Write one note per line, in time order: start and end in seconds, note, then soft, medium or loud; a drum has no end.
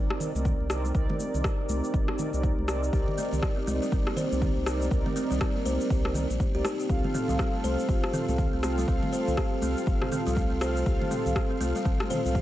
0.00 0.31 C4 medium
0.00 12.42 C4 medium
0.00 0.31 D#4 medium
0.00 6.86 D#4 medium
0.00 6.86 G4 medium
0.00 0.31 A#4 medium
0.00 0.31 D5 loud
0.00 6.86 D5 medium
0.10 cross-stick medium
0.20 low conga loud
0.20 shaker medium
0.35 0.55 C2 medium
0.35 0.67 C4 medium
0.35 0.67 D#4 medium
0.35 0.67 A#4 medium
0.35 0.67 D5 medium
0.35 muted conga soft
0.35 high conga loud
0.35 shaker medium
0.45 kick loud
0.45 low conga loud
0.45 shaker soft
0.60 0.92 C2 medium
0.60 high conga medium
0.70 0.92 C4 medium
0.70 0.92 D#4 medium
0.70 0.92 A#4 medium
0.70 0.92 D5 medium
0.70 cross-stick medium
0.70 muted conga soft
0.70 shaker medium
0.85 high conga medium
0.85 shaker soft
0.95 1.07 C2 loud
0.95 2.30 C4 loud
0.95 2.30 D#4 medium
0.95 2.30 A#4 medium
0.95 2.30 D5 loud
0.95 kick loud
0.95 shaker soft
1.09 muted conga medium
1.09 high conga medium
1.09 low conga loud
1.20 high conga medium
1.20 shaker medium
1.34 1.43 C2 medium
1.34 low conga medium
1.34 shaker medium
1.44 kick loud
1.44 cross-stick medium
1.44 muted conga soft
1.44 shaker soft
1.69 1.81 C2 medium
1.69 high conga loud
1.69 shaker loud
1.84 muted conga soft
1.84 shaker medium
1.94 2.06 G1 medium
1.94 kick loud
1.94 shaker soft
2.08 cross-stick medium
2.19 high conga medium
2.19 low conga loud
2.19 shaker medium
2.33 2.53 C2 medium
2.33 2.66 C4 medium
2.33 2.66 D#4 medium
2.33 2.66 A#4 medium
2.33 2.66 D5 medium
2.33 muted conga soft
2.33 shaker medium
2.43 kick loud
2.43 high conga medium
2.43 shaker soft
2.58 2.90 C2 medium
2.58 high conga medium
2.68 2.91 C4 medium
2.68 2.91 D#4 medium
2.68 2.91 A#4 medium
2.68 2.91 D5 medium
2.68 cross-stick medium
2.68 muted conga soft
2.68 shaker loud
2.83 shaker medium
2.93 3.05 C2 medium
2.93 4.28 C4 medium
2.93 4.28 D#4 medium
2.93 3.07 G4 medium
2.93 4.28 A#4 medium
2.93 4.28 D5 loud
2.93 kick loud
2.93 shaker soft
3.08 muted conga medium
3.08 high conga medium
3.08 low conga medium
3.18 3.31 C4 loud
3.18 high conga medium
3.18 shaker loud
3.32 3.41 C2 medium
3.32 low conga loud
3.32 shaker medium
3.43 kick loud
3.43 cross-stick medium
3.43 shaker soft
3.57 3.66 C4 medium
3.67 3.80 C2 loud
3.67 3.81 C4 loud
3.67 high conga loud
3.67 shaker loud
3.82 3.88 G3 medium
3.82 muted conga soft
3.82 shaker medium
3.92 4.05 G1 medium
3.92 4.05 C4 medium
3.92 kick loud
3.92 shaker soft
4.07 4.16 A#3 medium
4.07 cross-stick medium
4.17 4.31 C5 loud
4.17 low conga loud
4.17 shaker medium
4.32 4.52 C2 medium
4.32 4.64 C4 medium
4.32 4.64 D#4 medium
4.32 4.64 A#4 medium
4.32 4.64 D5 medium
4.32 muted conga soft
4.32 high conga loud
4.32 shaker medium
4.42 4.56 G4 medium
4.42 kick loud
4.42 low conga loud
4.42 shaker soft
4.56 4.89 C2 medium
4.56 high conga medium
4.66 4.89 C4 medium
4.66 4.80 C4 medium
4.66 4.89 D#4 medium
4.66 4.89 A#4 medium
4.66 4.89 D5 medium
4.66 cross-stick medium
4.66 muted conga soft
4.66 shaker loud
4.81 high conga medium
4.81 shaker medium
4.91 5.04 C2 medium
4.91 6.26 D#4 medium
4.91 6.26 A#4 medium
4.91 6.26 D5 loud
4.91 kick loud
4.91 shaker soft
5.06 5.15 C4 medium
5.06 muted conga medium
5.06 high conga medium
5.06 low conga loud
5.16 5.29 C4 loud
5.16 high conga medium
5.16 shaker loud
5.31 5.39 C2 medium
5.31 5.36 G3 loud
5.31 low conga medium
5.31 shaker medium
5.40 5.54 C4 medium
5.40 kick loud
5.40 cross-stick medium
5.40 muted conga soft
5.40 shaker soft
5.56 5.65 A#3 medium
5.66 5.78 C2 loud
5.66 5.80 C5 loud
5.66 high conga loud
5.66 shaker medium
5.81 muted conga soft
5.81 shaker medium
5.90 6.26 C2 medium
5.90 6.04 G4 medium
5.90 kick loud
5.90 shaker soft
6.05 cross-stick medium
6.14 6.29 C4 medium
6.14 high conga medium
6.14 low conga loud
6.14 shaker medium
6.30 6.38 A#1 medium
6.30 muted conga soft
6.30 shaker medium
6.40 kick loud
6.40 high conga medium
6.40 shaker soft
6.54 6.63 C2 loud
6.54 6.66 C4 loud
6.54 6.66 D#4 medium
6.54 6.64 G4 loud
6.54 6.66 A#4 medium
6.54 6.66 D5 loud
6.54 high conga medium
6.65 6.78 D#4 medium
6.65 cross-stick medium
6.65 muted conga soft
6.65 shaker medium
6.80 6.89 G4 medium
6.80 shaker medium
6.89 7.02 C2 loud
6.89 8.25 C4 medium
6.89 8.25 F4 medium
6.89 12.42 F4 medium
6.89 8.25 A4 medium
6.89 12.42 A4 medium
6.89 8.25 F5 loud
6.89 kick loud
6.89 shaker soft
7.04 7.13 C4 medium
7.04 muted conga medium
7.04 high conga medium
7.04 low conga medium
7.14 7.28 C4 loud
7.14 mid tom medium
7.14 high conga medium
7.14 shaker medium
7.28 7.38 C2 medium
7.28 7.35 G3 loud
7.28 low conga medium
7.28 shaker medium
7.39 7.53 C4 medium
7.39 kick loud
7.39 cross-stick medium
7.39 shaker soft
7.54 7.63 A3 medium
7.64 7.76 C2 medium
7.64 7.78 C5 loud
7.64 high conga medium
7.64 shaker medium
7.78 muted conga soft
7.78 shaker medium
7.89 8.01 G1 medium
7.89 8.03 G4 medium
7.89 kick loud
7.89 shaker soft
8.04 cross-stick medium
8.13 8.27 C4 loud
8.13 mid tom medium
8.13 low conga loud
8.13 shaker medium
8.28 8.48 C2 medium
8.28 8.61 C4 medium
8.28 8.61 F4 medium
8.28 8.61 A4 medium
8.28 8.61 F5 medium
8.28 muted conga soft
8.28 high conga loud
8.28 shaker soft
8.38 kick loud
8.38 low conga loud
8.38 shaker soft
8.53 8.85 C2 medium
8.53 8.62 C4 medium
8.53 high conga medium
8.63 8.86 C4 medium
8.63 8.77 C4 loud
8.63 8.86 F4 medium
8.63 8.86 A4 medium
8.63 8.86 F5 medium
8.63 cross-stick medium
8.63 muted conga medium
8.63 shaker medium
8.77 8.83 G3 loud
8.77 high conga medium
8.77 shaker medium
8.88 9.00 C2 medium
8.88 10.23 C4 loud
8.88 9.01 C4 medium
8.88 10.23 F4 medium
8.88 10.23 A4 medium
8.88 10.23 F5 loud
8.88 kick loud
8.88 shaker soft
9.02 9.12 A3 medium
9.02 muted conga medium
9.02 high conga medium
9.02 low conga loud
9.13 9.27 C5 loud
9.13 high conga medium
9.13 shaker medium
9.27 9.36 C2 medium
9.27 low conga medium
9.27 shaker soft
9.37 9.52 G4 medium
9.37 kick loud
9.37 cross-stick medium
9.37 shaker soft
9.62 9.75 C2 loud
9.62 9.76 C4 loud
9.62 high conga loud
9.62 shaker medium
9.77 muted conga soft
9.77 shaker soft
9.87 10.00 G1 medium
9.87 kick loud
9.87 shaker soft
10.02 10.11 C4 medium
10.02 cross-stick medium
10.02 mid tom medium
10.12 10.25 C4 loud
10.12 mid tom medium
10.12 high conga medium
10.12 low conga medium
10.12 shaker medium
10.26 10.47 C2 medium
10.26 10.32 G3 loud
10.26 10.59 C4 medium
10.26 10.59 F4 medium
10.26 10.59 A4 medium
10.26 10.59 F5 medium
10.26 muted conga soft
10.26 shaker medium
10.36 10.50 C4 medium
10.36 kick loud
10.36 high conga medium
10.36 shaker soft
10.51 10.84 C2 medium
10.51 10.61 A3 medium
10.51 high conga medium
10.61 10.84 C4 medium
10.61 10.84 F4 medium
10.61 10.84 A4 medium
10.61 10.76 C5 loud
10.61 10.84 F5 medium
10.61 cross-stick medium
10.61 muted conga soft
10.61 shaker medium
10.76 shaker medium
10.86 10.99 C2 medium
10.86 12.22 C4 medium
10.86 12.21 F4 medium
10.86 11.00 G4 medium
10.86 12.21 A4 medium
10.86 12.21 F5 loud
10.86 kick loud
10.86 shaker soft
11.01 muted conga medium
11.01 high conga medium
11.01 low conga loud
11.11 11.24 C4 loud
11.11 mid tom medium
11.11 high conga medium
11.11 shaker medium
11.26 11.34 C2 medium
11.26 low conga medium
11.26 shaker soft
11.36 kick loud
11.36 cross-stick medium
11.36 shaker soft
11.51 11.59 C4 medium
11.60 11.73 C2 loud
11.60 11.74 C4 loud
11.60 high conga medium
11.60 shaker medium
11.76 11.81 G3 loud
11.76 muted conga medium
11.76 shaker soft
11.85 11.98 G1 medium
11.85 11.99 C4 medium
11.85 kick loud
11.85 shaker soft
12.00 12.09 A3 medium
12.00 cross-stick medium
12.10 12.24 C5 loud
12.10 mid tom medium
12.10 low conga loud
12.10 shaker medium
12.25 12.42 C2 medium
12.25 12.42 C4 medium
12.25 12.42 F4 medium
12.25 12.42 A4 medium
12.25 12.42 F5 medium
12.25 muted conga soft
12.25 high conga medium
12.25 shaker soft
12.35 12.42 G4 medium
12.35 kick loud
12.35 low conga loud
12.35 shaker soft